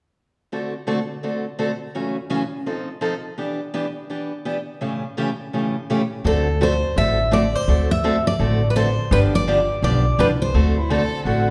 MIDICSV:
0, 0, Header, 1, 5, 480
1, 0, Start_track
1, 0, Tempo, 358209
1, 683, Time_signature, 4, 2, 24, 8
1, 15415, End_track
2, 0, Start_track
2, 0, Title_t, "Steel-string acoustic guitar"
2, 0, Program_c, 0, 25
2, 8397, Note_on_c, 0, 69, 64
2, 8833, Note_off_c, 0, 69, 0
2, 8885, Note_on_c, 0, 72, 68
2, 9343, Note_off_c, 0, 72, 0
2, 9348, Note_on_c, 0, 76, 74
2, 9788, Note_off_c, 0, 76, 0
2, 9826, Note_on_c, 0, 74, 75
2, 10123, Note_off_c, 0, 74, 0
2, 10123, Note_on_c, 0, 72, 66
2, 10597, Note_off_c, 0, 72, 0
2, 10602, Note_on_c, 0, 76, 78
2, 11078, Note_off_c, 0, 76, 0
2, 11083, Note_on_c, 0, 74, 77
2, 11626, Note_off_c, 0, 74, 0
2, 11660, Note_on_c, 0, 71, 53
2, 11731, Note_off_c, 0, 71, 0
2, 11736, Note_on_c, 0, 72, 64
2, 12222, Note_off_c, 0, 72, 0
2, 12227, Note_on_c, 0, 71, 75
2, 12305, Note_off_c, 0, 71, 0
2, 12531, Note_on_c, 0, 74, 81
2, 13171, Note_off_c, 0, 74, 0
2, 13187, Note_on_c, 0, 74, 74
2, 13664, Note_off_c, 0, 74, 0
2, 13669, Note_on_c, 0, 71, 65
2, 13747, Note_off_c, 0, 71, 0
2, 13960, Note_on_c, 0, 72, 66
2, 15415, Note_off_c, 0, 72, 0
2, 15415, End_track
3, 0, Start_track
3, 0, Title_t, "Violin"
3, 0, Program_c, 1, 40
3, 14436, Note_on_c, 1, 64, 75
3, 14607, Note_on_c, 1, 69, 93
3, 14627, Note_off_c, 1, 64, 0
3, 15085, Note_off_c, 1, 69, 0
3, 15092, Note_on_c, 1, 66, 77
3, 15405, Note_off_c, 1, 66, 0
3, 15415, End_track
4, 0, Start_track
4, 0, Title_t, "Steel-string acoustic guitar"
4, 0, Program_c, 2, 25
4, 698, Note_on_c, 2, 50, 47
4, 704, Note_on_c, 2, 57, 48
4, 704, Note_on_c, 2, 60, 55
4, 707, Note_on_c, 2, 66, 52
4, 711, Note_on_c, 2, 69, 54
4, 976, Note_off_c, 2, 50, 0
4, 979, Note_off_c, 2, 57, 0
4, 979, Note_off_c, 2, 60, 0
4, 980, Note_off_c, 2, 66, 0
4, 982, Note_off_c, 2, 69, 0
4, 1162, Note_on_c, 2, 50, 65
4, 1170, Note_on_c, 2, 57, 67
4, 1170, Note_on_c, 2, 60, 79
4, 1175, Note_on_c, 2, 66, 83
4, 1175, Note_on_c, 2, 69, 82
4, 1314, Note_off_c, 2, 50, 0
4, 1318, Note_off_c, 2, 57, 0
4, 1318, Note_off_c, 2, 60, 0
4, 1321, Note_off_c, 2, 66, 0
4, 1321, Note_off_c, 2, 69, 0
4, 1649, Note_on_c, 2, 50, 47
4, 1652, Note_on_c, 2, 60, 48
4, 1654, Note_on_c, 2, 57, 53
4, 1659, Note_on_c, 2, 66, 53
4, 1661, Note_on_c, 2, 69, 51
4, 1932, Note_off_c, 2, 50, 0
4, 1934, Note_off_c, 2, 60, 0
4, 1935, Note_off_c, 2, 57, 0
4, 1937, Note_off_c, 2, 66, 0
4, 1938, Note_off_c, 2, 69, 0
4, 2124, Note_on_c, 2, 50, 62
4, 2126, Note_on_c, 2, 60, 80
4, 2130, Note_on_c, 2, 57, 67
4, 2136, Note_on_c, 2, 66, 70
4, 2138, Note_on_c, 2, 69, 72
4, 2277, Note_off_c, 2, 50, 0
4, 2277, Note_off_c, 2, 60, 0
4, 2279, Note_off_c, 2, 57, 0
4, 2282, Note_off_c, 2, 66, 0
4, 2283, Note_off_c, 2, 69, 0
4, 2608, Note_on_c, 2, 42, 48
4, 2610, Note_on_c, 2, 49, 49
4, 2613, Note_on_c, 2, 52, 50
4, 2613, Note_on_c, 2, 57, 60
4, 2618, Note_on_c, 2, 66, 58
4, 2619, Note_on_c, 2, 61, 53
4, 2893, Note_off_c, 2, 42, 0
4, 2894, Note_off_c, 2, 49, 0
4, 2895, Note_off_c, 2, 52, 0
4, 2895, Note_off_c, 2, 57, 0
4, 2898, Note_off_c, 2, 61, 0
4, 2898, Note_off_c, 2, 66, 0
4, 3077, Note_on_c, 2, 42, 72
4, 3082, Note_on_c, 2, 49, 73
4, 3083, Note_on_c, 2, 52, 71
4, 3087, Note_on_c, 2, 57, 80
4, 3087, Note_on_c, 2, 61, 87
4, 3092, Note_on_c, 2, 66, 80
4, 3234, Note_off_c, 2, 42, 0
4, 3236, Note_off_c, 2, 49, 0
4, 3237, Note_off_c, 2, 52, 0
4, 3239, Note_off_c, 2, 57, 0
4, 3239, Note_off_c, 2, 61, 0
4, 3241, Note_off_c, 2, 66, 0
4, 3567, Note_on_c, 2, 53, 50
4, 3570, Note_on_c, 2, 60, 50
4, 3571, Note_on_c, 2, 63, 51
4, 3578, Note_on_c, 2, 69, 53
4, 3853, Note_off_c, 2, 53, 0
4, 3855, Note_off_c, 2, 60, 0
4, 3855, Note_off_c, 2, 63, 0
4, 3859, Note_off_c, 2, 69, 0
4, 4033, Note_on_c, 2, 60, 73
4, 4035, Note_on_c, 2, 53, 69
4, 4043, Note_on_c, 2, 63, 76
4, 4048, Note_on_c, 2, 69, 78
4, 4193, Note_off_c, 2, 60, 0
4, 4194, Note_off_c, 2, 53, 0
4, 4197, Note_off_c, 2, 63, 0
4, 4200, Note_off_c, 2, 69, 0
4, 4524, Note_on_c, 2, 59, 54
4, 4525, Note_on_c, 2, 52, 52
4, 4531, Note_on_c, 2, 62, 64
4, 4535, Note_on_c, 2, 67, 55
4, 4812, Note_off_c, 2, 59, 0
4, 4813, Note_off_c, 2, 52, 0
4, 4816, Note_off_c, 2, 62, 0
4, 4818, Note_off_c, 2, 67, 0
4, 5007, Note_on_c, 2, 59, 79
4, 5009, Note_on_c, 2, 52, 77
4, 5014, Note_on_c, 2, 62, 81
4, 5022, Note_on_c, 2, 67, 78
4, 5161, Note_off_c, 2, 52, 0
4, 5161, Note_off_c, 2, 59, 0
4, 5164, Note_off_c, 2, 62, 0
4, 5168, Note_off_c, 2, 67, 0
4, 5489, Note_on_c, 2, 52, 54
4, 5493, Note_on_c, 2, 59, 53
4, 5497, Note_on_c, 2, 62, 52
4, 5503, Note_on_c, 2, 67, 58
4, 5776, Note_off_c, 2, 52, 0
4, 5778, Note_off_c, 2, 59, 0
4, 5780, Note_off_c, 2, 62, 0
4, 5783, Note_off_c, 2, 67, 0
4, 5966, Note_on_c, 2, 59, 69
4, 5967, Note_on_c, 2, 52, 68
4, 5970, Note_on_c, 2, 62, 69
4, 5974, Note_on_c, 2, 67, 72
4, 6121, Note_off_c, 2, 52, 0
4, 6121, Note_off_c, 2, 59, 0
4, 6123, Note_off_c, 2, 62, 0
4, 6125, Note_off_c, 2, 67, 0
4, 6443, Note_on_c, 2, 52, 58
4, 6444, Note_on_c, 2, 45, 54
4, 6449, Note_on_c, 2, 49, 53
4, 6451, Note_on_c, 2, 57, 56
4, 6451, Note_on_c, 2, 61, 60
4, 6455, Note_on_c, 2, 67, 53
4, 6733, Note_off_c, 2, 52, 0
4, 6734, Note_off_c, 2, 45, 0
4, 6736, Note_off_c, 2, 49, 0
4, 6737, Note_off_c, 2, 61, 0
4, 6738, Note_off_c, 2, 57, 0
4, 6739, Note_off_c, 2, 67, 0
4, 6929, Note_on_c, 2, 45, 69
4, 6934, Note_on_c, 2, 49, 84
4, 6937, Note_on_c, 2, 57, 72
4, 6939, Note_on_c, 2, 52, 79
4, 6943, Note_on_c, 2, 67, 86
4, 6944, Note_on_c, 2, 61, 82
4, 7083, Note_off_c, 2, 45, 0
4, 7085, Note_off_c, 2, 49, 0
4, 7087, Note_off_c, 2, 57, 0
4, 7088, Note_off_c, 2, 52, 0
4, 7090, Note_off_c, 2, 61, 0
4, 7090, Note_off_c, 2, 67, 0
4, 7413, Note_on_c, 2, 45, 47
4, 7417, Note_on_c, 2, 52, 54
4, 7419, Note_on_c, 2, 49, 50
4, 7419, Note_on_c, 2, 57, 52
4, 7425, Note_on_c, 2, 61, 55
4, 7426, Note_on_c, 2, 67, 55
4, 7699, Note_off_c, 2, 45, 0
4, 7701, Note_off_c, 2, 52, 0
4, 7702, Note_off_c, 2, 49, 0
4, 7702, Note_off_c, 2, 57, 0
4, 7704, Note_off_c, 2, 61, 0
4, 7705, Note_off_c, 2, 67, 0
4, 7902, Note_on_c, 2, 45, 73
4, 7904, Note_on_c, 2, 61, 77
4, 7906, Note_on_c, 2, 49, 72
4, 7908, Note_on_c, 2, 52, 66
4, 7908, Note_on_c, 2, 57, 78
4, 7913, Note_on_c, 2, 67, 78
4, 8049, Note_off_c, 2, 45, 0
4, 8051, Note_off_c, 2, 49, 0
4, 8051, Note_off_c, 2, 61, 0
4, 8052, Note_off_c, 2, 52, 0
4, 8052, Note_off_c, 2, 57, 0
4, 8055, Note_off_c, 2, 67, 0
4, 8367, Note_on_c, 2, 50, 57
4, 8373, Note_on_c, 2, 57, 65
4, 8376, Note_on_c, 2, 66, 62
4, 8380, Note_on_c, 2, 60, 60
4, 8380, Note_on_c, 2, 69, 62
4, 8655, Note_off_c, 2, 50, 0
4, 8659, Note_off_c, 2, 57, 0
4, 8660, Note_off_c, 2, 66, 0
4, 8662, Note_off_c, 2, 60, 0
4, 8662, Note_off_c, 2, 69, 0
4, 8854, Note_on_c, 2, 57, 86
4, 8856, Note_on_c, 2, 60, 80
4, 8857, Note_on_c, 2, 50, 85
4, 8864, Note_on_c, 2, 66, 89
4, 8869, Note_on_c, 2, 69, 97
4, 9005, Note_off_c, 2, 57, 0
4, 9006, Note_off_c, 2, 60, 0
4, 9007, Note_off_c, 2, 50, 0
4, 9010, Note_off_c, 2, 66, 0
4, 9012, Note_off_c, 2, 69, 0
4, 9335, Note_on_c, 2, 50, 56
4, 9342, Note_on_c, 2, 60, 54
4, 9343, Note_on_c, 2, 57, 61
4, 9344, Note_on_c, 2, 66, 59
4, 9347, Note_on_c, 2, 69, 61
4, 9619, Note_off_c, 2, 50, 0
4, 9623, Note_off_c, 2, 57, 0
4, 9623, Note_off_c, 2, 60, 0
4, 9624, Note_off_c, 2, 66, 0
4, 9625, Note_off_c, 2, 69, 0
4, 9799, Note_on_c, 2, 50, 79
4, 9803, Note_on_c, 2, 57, 78
4, 9803, Note_on_c, 2, 60, 73
4, 9807, Note_on_c, 2, 66, 79
4, 9810, Note_on_c, 2, 69, 79
4, 9957, Note_off_c, 2, 50, 0
4, 9959, Note_off_c, 2, 57, 0
4, 9959, Note_off_c, 2, 60, 0
4, 9961, Note_off_c, 2, 66, 0
4, 9963, Note_off_c, 2, 69, 0
4, 10295, Note_on_c, 2, 50, 58
4, 10296, Note_on_c, 2, 57, 57
4, 10301, Note_on_c, 2, 60, 64
4, 10304, Note_on_c, 2, 66, 66
4, 10305, Note_on_c, 2, 69, 65
4, 10579, Note_off_c, 2, 50, 0
4, 10579, Note_off_c, 2, 57, 0
4, 10581, Note_off_c, 2, 60, 0
4, 10583, Note_off_c, 2, 66, 0
4, 10584, Note_off_c, 2, 69, 0
4, 10767, Note_on_c, 2, 50, 74
4, 10773, Note_on_c, 2, 57, 89
4, 10775, Note_on_c, 2, 66, 94
4, 10778, Note_on_c, 2, 60, 91
4, 10783, Note_on_c, 2, 69, 85
4, 10921, Note_off_c, 2, 50, 0
4, 10923, Note_off_c, 2, 57, 0
4, 10925, Note_off_c, 2, 66, 0
4, 10926, Note_off_c, 2, 60, 0
4, 10928, Note_off_c, 2, 69, 0
4, 11253, Note_on_c, 2, 50, 48
4, 11253, Note_on_c, 2, 60, 51
4, 11256, Note_on_c, 2, 57, 55
4, 11259, Note_on_c, 2, 66, 60
4, 11261, Note_on_c, 2, 69, 64
4, 11537, Note_off_c, 2, 50, 0
4, 11537, Note_off_c, 2, 60, 0
4, 11538, Note_off_c, 2, 57, 0
4, 11540, Note_off_c, 2, 66, 0
4, 11541, Note_off_c, 2, 69, 0
4, 11734, Note_on_c, 2, 50, 76
4, 11735, Note_on_c, 2, 57, 74
4, 11742, Note_on_c, 2, 60, 80
4, 11743, Note_on_c, 2, 66, 77
4, 11744, Note_on_c, 2, 69, 89
4, 11883, Note_off_c, 2, 50, 0
4, 11883, Note_off_c, 2, 57, 0
4, 11887, Note_off_c, 2, 60, 0
4, 11888, Note_off_c, 2, 66, 0
4, 11888, Note_off_c, 2, 69, 0
4, 12211, Note_on_c, 2, 50, 54
4, 12213, Note_on_c, 2, 53, 64
4, 12215, Note_on_c, 2, 59, 67
4, 12217, Note_on_c, 2, 62, 73
4, 12223, Note_on_c, 2, 67, 70
4, 12495, Note_off_c, 2, 50, 0
4, 12496, Note_off_c, 2, 53, 0
4, 12496, Note_off_c, 2, 59, 0
4, 12498, Note_off_c, 2, 62, 0
4, 12500, Note_off_c, 2, 67, 0
4, 12693, Note_on_c, 2, 53, 85
4, 12698, Note_on_c, 2, 50, 80
4, 12703, Note_on_c, 2, 67, 85
4, 12704, Note_on_c, 2, 59, 82
4, 12706, Note_on_c, 2, 62, 94
4, 12842, Note_off_c, 2, 53, 0
4, 12844, Note_off_c, 2, 50, 0
4, 12847, Note_off_c, 2, 59, 0
4, 12847, Note_off_c, 2, 67, 0
4, 12848, Note_off_c, 2, 62, 0
4, 13175, Note_on_c, 2, 50, 59
4, 13176, Note_on_c, 2, 53, 60
4, 13179, Note_on_c, 2, 59, 60
4, 13180, Note_on_c, 2, 67, 64
4, 13181, Note_on_c, 2, 62, 71
4, 13455, Note_off_c, 2, 50, 0
4, 13456, Note_off_c, 2, 53, 0
4, 13458, Note_off_c, 2, 59, 0
4, 13458, Note_off_c, 2, 67, 0
4, 13459, Note_off_c, 2, 62, 0
4, 13647, Note_on_c, 2, 50, 74
4, 13650, Note_on_c, 2, 53, 86
4, 13654, Note_on_c, 2, 59, 84
4, 13657, Note_on_c, 2, 62, 89
4, 13660, Note_on_c, 2, 67, 79
4, 13798, Note_off_c, 2, 50, 0
4, 13799, Note_off_c, 2, 53, 0
4, 13801, Note_off_c, 2, 59, 0
4, 13803, Note_off_c, 2, 62, 0
4, 13804, Note_off_c, 2, 67, 0
4, 14129, Note_on_c, 2, 57, 70
4, 14132, Note_on_c, 2, 50, 57
4, 14135, Note_on_c, 2, 66, 74
4, 14136, Note_on_c, 2, 60, 64
4, 14141, Note_on_c, 2, 69, 64
4, 14412, Note_off_c, 2, 57, 0
4, 14413, Note_off_c, 2, 50, 0
4, 14414, Note_off_c, 2, 66, 0
4, 14415, Note_off_c, 2, 60, 0
4, 14417, Note_off_c, 2, 69, 0
4, 14610, Note_on_c, 2, 50, 79
4, 14612, Note_on_c, 2, 57, 89
4, 14613, Note_on_c, 2, 60, 93
4, 14620, Note_on_c, 2, 66, 83
4, 14621, Note_on_c, 2, 69, 92
4, 14758, Note_off_c, 2, 50, 0
4, 14759, Note_off_c, 2, 57, 0
4, 14759, Note_off_c, 2, 60, 0
4, 14763, Note_off_c, 2, 66, 0
4, 14763, Note_off_c, 2, 69, 0
4, 15089, Note_on_c, 2, 57, 49
4, 15090, Note_on_c, 2, 50, 50
4, 15094, Note_on_c, 2, 60, 51
4, 15096, Note_on_c, 2, 66, 60
4, 15101, Note_on_c, 2, 69, 57
4, 15370, Note_off_c, 2, 57, 0
4, 15371, Note_off_c, 2, 50, 0
4, 15373, Note_off_c, 2, 60, 0
4, 15374, Note_off_c, 2, 66, 0
4, 15376, Note_off_c, 2, 69, 0
4, 15415, End_track
5, 0, Start_track
5, 0, Title_t, "Upright bass"
5, 0, Program_c, 3, 32
5, 8373, Note_on_c, 3, 38, 78
5, 9142, Note_off_c, 3, 38, 0
5, 9330, Note_on_c, 3, 33, 63
5, 10099, Note_off_c, 3, 33, 0
5, 10288, Note_on_c, 3, 38, 74
5, 11057, Note_off_c, 3, 38, 0
5, 11247, Note_on_c, 3, 33, 73
5, 12016, Note_off_c, 3, 33, 0
5, 12208, Note_on_c, 3, 31, 85
5, 12975, Note_off_c, 3, 31, 0
5, 13165, Note_on_c, 3, 35, 68
5, 13574, Note_off_c, 3, 35, 0
5, 13652, Note_on_c, 3, 36, 72
5, 14057, Note_off_c, 3, 36, 0
5, 14125, Note_on_c, 3, 38, 77
5, 14892, Note_off_c, 3, 38, 0
5, 15079, Note_on_c, 3, 33, 64
5, 15415, Note_off_c, 3, 33, 0
5, 15415, End_track
0, 0, End_of_file